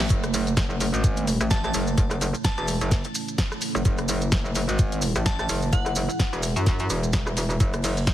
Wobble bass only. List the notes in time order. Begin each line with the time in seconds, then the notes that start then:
0.10 F#1
0.57 F#1
0.94 G#1
1.41 A1
1.74 F#1
1.97 F#1
2.58 E1
2.81 F#1
3.75 F#1
3.85 F#1
4.32 F#1
4.69 G#1
5.16 A1
5.49 F#1
5.73 F#1
6.33 E1
6.56 F#2
6.90 E1
7.13 E1
7.60 F#1
8.07 F#1